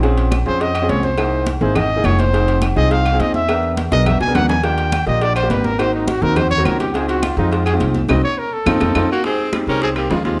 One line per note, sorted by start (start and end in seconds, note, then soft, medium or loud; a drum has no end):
0.00 0.41 A#1 loud
0.00 0.33 C4 medium
0.00 0.33 C#4 medium
0.00 0.33 F4 medium
0.00 0.33 G#4 loud
0.00 cowbell loud
0.00 high conga soft
0.00 low agogo medium
0.17 cowbell medium
0.17 high conga soft
0.17 low agogo medium
0.31 cowbell medium
0.31 high conga loud
0.31 low agogo loud
0.31 claves medium
0.46 0.86 F2 loud
0.46 0.71 C4 medium
0.46 0.72 C#4 medium
0.46 0.72 F4 medium
0.46 0.72 G#4 medium
0.46 0.63 C5 loud
0.46 high conga soft
0.60 0.91 D#5 loud
0.60 cowbell loud
0.60 high conga soft
0.60 low agogo medium
0.75 cowbell medium
0.75 high conga soft
0.75 low agogo loud
0.75 claves medium
0.82 1.07 C4 medium
0.82 1.07 C#4 medium
0.82 1.08 F4 medium
0.82 1.08 G#4 medium
0.89 1.56 C2 medium
0.89 1.06 C#5 loud
0.89 cowbell medium
0.89 high conga medium
0.89 low timbale medium
1.03 1.47 C5 loud
1.03 high conga medium
1.03 low agogo medium
1.18 1.48 A#3 medium
1.18 1.48 D#4 medium
1.18 1.49 E4 medium
1.18 1.49 G#4 medium
1.18 cowbell loud
1.18 high conga soft
1.18 low agogo loud
1.18 claves medium
1.32 high conga soft
1.47 cowbell medium
1.47 high conga loud
1.47 low agogo medium
1.61 2.01 G#1 loud
1.61 1.87 A#3 medium
1.61 1.87 D#4 medium
1.61 1.87 E4 medium
1.61 1.87 G#4 loud
1.61 1.78 C5 medium
1.61 high conga soft
1.75 2.07 D#5 loud
1.75 cowbell loud
1.75 high conga soft
1.75 low conga medium
1.75 low agogo loud
1.75 claves medium
1.90 high conga soft
1.96 2.22 A#3 medium
1.96 2.22 D#4 medium
1.96 2.23 E4 medium
1.96 2.23 G#4 medium
2.04 2.71 F1 medium
2.04 2.21 C#5 loud
2.04 cowbell medium
2.04 high conga medium
2.04 low timbale medium
2.04 low agogo loud
2.04 claves medium
2.19 2.63 C5 loud
2.19 cowbell medium
2.19 high conga medium
2.33 2.64 C4 medium
2.33 2.64 D#4 medium
2.33 2.64 F4 medium
2.33 2.64 G#4 medium
2.33 cowbell loud
2.33 high conga soft
2.33 low agogo loud
2.47 cowbell medium
2.47 high conga soft
2.47 low agogo medium
2.62 cowbell medium
2.62 high conga loud
2.62 low agogo loud
2.62 claves medium
2.76 3.17 C2 loud
2.76 3.02 C4 medium
2.76 3.02 D#4 medium
2.76 3.02 F4 medium
2.76 3.02 G#4 loud
2.76 2.93 D#5 loud
2.76 high conga soft
2.91 3.22 F5 loud
2.91 cowbell loud
2.91 high conga soft
2.91 low agogo medium
3.05 cowbell medium
3.05 high conga soft
3.05 low agogo loud
3.05 claves medium
3.13 3.38 C4 medium
3.13 3.38 D#4 medium
3.13 3.38 F4 medium
3.13 3.39 G#4 loud
3.19 3.86 E2 medium
3.19 3.34 D#5 loud
3.19 cowbell medium
3.19 high conga medium
3.34 3.75 E5 loud
3.34 high conga medium
3.34 low agogo medium
3.48 3.79 B3 medium
3.48 3.79 D4 medium
3.48 3.79 G#4 medium
3.48 3.79 A#4 medium
3.48 cowbell loud
3.48 high conga soft
3.48 low agogo loud
3.48 claves medium
3.63 high conga soft
3.77 cowbell medium
3.77 high conga loud
3.77 low agogo medium
3.92 4.19 B1 loud
3.92 4.17 B3 medium
3.92 4.17 D4 medium
3.92 4.17 G#4 medium
3.92 4.18 A#4 medium
3.92 4.08 D#5 loud
3.92 high bongo medium
4.06 4.20 E5 loud
4.06 cowbell loud
4.06 high conga soft
4.06 low conga medium
4.06 low agogo loud
4.06 claves medium
4.20 4.34 C#2 medium
4.20 4.37 G#5 loud
4.20 high bongo loud
4.20 high conga soft
4.27 4.53 B3 medium
4.27 4.53 D4 medium
4.27 4.53 G#4 medium
4.27 4.53 A#4 medium
4.35 5.02 D#2 medium
4.35 4.48 F#5 loud
4.35 cowbell medium
4.35 low bongo loud
4.35 high conga medium
4.35 low timbale medium
4.35 low agogo loud
4.35 claves medium
4.49 4.66 G#5 loud
4.49 cowbell medium
4.49 low bongo medium
4.49 high conga medium
4.63 4.94 A#3 medium
4.63 4.94 D4 medium
4.63 4.94 F4 medium
4.63 4.95 G4 medium
4.63 5.06 G5 medium
4.63 cowbell loud
4.63 high conga soft
4.63 low agogo medium
4.78 cowbell medium
4.78 high conga soft
4.78 low agogo medium
4.92 cowbell medium
4.92 high conga loud
4.92 low agogo loud
4.92 claves medium
5.06 5.47 A#1 loud
5.06 5.32 A#3 medium
5.06 5.32 D4 medium
5.06 5.32 F4 medium
5.06 5.33 G4 medium
5.06 5.24 D#5 loud
5.06 high conga soft
5.21 5.35 D5 loud
5.21 cowbell loud
5.21 high conga soft
5.21 low agogo medium
5.36 5.52 C5 loud
5.36 cowbell medium
5.36 high conga soft
5.36 low agogo loud
5.36 claves medium
5.43 5.68 A#3 medium
5.43 5.68 D4 medium
5.43 5.69 F4 medium
5.43 5.69 G4 medium
5.50 6.17 G#1 loud
5.50 5.66 B4 medium
5.50 cowbell medium
5.50 high conga medium
5.50 low timbale medium
5.64 5.81 A#4 loud
5.64 high conga medium
5.64 low agogo medium
5.79 6.09 A#3 medium
5.79 6.10 C4 medium
5.79 6.10 D#4 medium
5.79 6.10 F#4 medium
5.79 5.94 C5 loud
5.79 cowbell loud
5.79 high conga soft
5.79 low agogo loud
5.79 claves medium
5.93 6.09 D#4 medium
5.93 high conga soft
6.08 6.24 F#4 medium
6.08 cowbell medium
6.08 high conga loud
6.08 low agogo medium
6.22 6.62 D#2 loud
6.22 6.48 A#3 medium
6.22 6.48 C4 medium
6.22 6.48 D#4 medium
6.22 6.48 F#4 medium
6.22 6.38 A#4 loud
6.22 high conga soft
6.36 6.50 C5 loud
6.36 cowbell loud
6.36 high conga soft
6.36 low conga medium
6.36 low agogo loud
6.36 claves medium
6.51 6.67 C#5 loud
6.51 high conga soft
6.51 low conga medium
6.58 6.83 A#3 medium
6.58 6.84 C4 medium
6.58 6.84 D#4 medium
6.58 6.84 F#4 medium
6.65 7.32 C#2 loud
6.65 6.80 A#4 loud
6.65 cowbell medium
6.65 high conga medium
6.65 low timbale medium
6.65 low agogo loud
6.65 claves medium
6.80 6.96 G4 loud
6.80 cowbell medium
6.80 high conga medium
6.94 7.24 G#3 medium
6.94 7.25 C4 medium
6.94 7.25 D#4 medium
6.94 7.25 F4 medium
6.94 7.08 G#4 medium
6.94 cowbell loud
6.94 high conga soft
6.94 low agogo medium
7.08 7.25 F#4 medium
7.08 cowbell medium
7.08 high conga soft
7.08 low agogo loud
7.23 7.37 F4 medium
7.23 cowbell medium
7.23 high conga loud
7.23 low agogo loud
7.23 claves medium
7.37 7.77 F2 loud
7.37 7.63 G#3 medium
7.37 7.63 C4 medium
7.37 7.53 D#4 loud
7.37 7.63 D#4 medium
7.37 7.63 F4 loud
7.37 high conga soft
7.51 7.65 F4 medium
7.51 cowbell loud
7.51 high conga soft
7.51 low agogo medium
7.66 7.74 G#4 loud
7.66 cowbell medium
7.66 high conga soft
7.66 low agogo loud
7.66 claves medium
7.73 7.98 G#3 medium
7.73 7.98 C4 medium
7.73 7.98 D#4 medium
7.73 7.99 F4 loud
7.80 8.07 C2 loud
7.80 cowbell medium
7.80 high conga medium
7.95 high conga medium
7.95 low agogo medium
8.09 8.20 C2 loud
8.09 8.18 C4 loud
8.09 8.18 D#4 medium
8.09 8.18 F#4 loud
8.09 8.23 D#5 medium
8.09 cowbell loud
8.09 high conga loud
8.09 high timbale loud
8.09 claves loud
8.24 8.40 C#5 loud
8.38 8.55 A#4 loud
8.53 9.10 A4 loud
8.66 8.77 F2 loud
8.66 8.76 C4 loud
8.66 8.76 D#4 loud
8.66 8.76 F4 loud
8.66 cowbell loud
8.66 high conga loud
8.66 high timbale loud
8.66 claves loud
8.80 8.91 F2 medium
8.80 8.90 C4 loud
8.80 8.90 D#4 loud
8.80 8.90 F4 loud
8.80 cowbell loud
8.80 high conga loud
8.80 high timbale loud
8.80 claves loud
8.95 9.06 F2 loud
8.95 9.05 C4 loud
8.95 9.05 D#4 loud
8.95 9.05 F4 loud
8.95 cowbell loud
8.95 high conga loud
8.95 high timbale loud
8.95 claves loud
9.12 9.24 A#3 medium
9.12 9.24 F#4 loud
9.24 9.44 G#3 medium
9.24 9.44 C4 medium
9.24 9.51 C4 medium
9.24 9.45 D#4 medium
9.24 9.45 G4 medium
9.24 9.52 G#4 loud
9.24 high bongo medium
9.24 high conga soft
9.24 high timbale medium
9.39 high conga soft
9.52 9.63 G#3 medium
9.52 9.63 C4 medium
9.52 9.63 D#4 medium
9.52 9.63 G4 medium
9.52 high bongo medium
9.52 high conga loud
9.52 high timbale medium
9.52 low timbale medium
9.52 claves medium
9.67 10.07 C2 medium
9.67 10.08 G#3 medium
9.67 10.08 C4 medium
9.67 9.81 C#4 medium
9.67 10.08 D#4 medium
9.67 10.08 G4 medium
9.67 9.81 A#4 loud
9.67 high conga soft
9.81 9.89 C4 medium
9.81 9.90 G#4 medium
9.81 high bongo medium
9.81 high conga soft
9.81 high timbale medium
9.96 10.10 A#3 medium
9.96 10.10 G4 medium
9.96 high conga soft
9.96 high timbale medium
9.96 claves medium
10.10 10.40 D#2 medium
10.10 10.24 G#3 medium
10.10 10.24 F4 medium
10.10 high bongo medium
10.10 low bongo medium
10.10 high conga soft
10.10 low timbale medium
10.25 10.39 G#3 medium
10.25 10.38 G#3 medium
10.25 10.39 C4 medium
10.25 10.39 D#4 medium
10.25 10.38 F4 medium
10.25 10.40 G4 medium
10.25 high conga medium
10.25 high timbale medium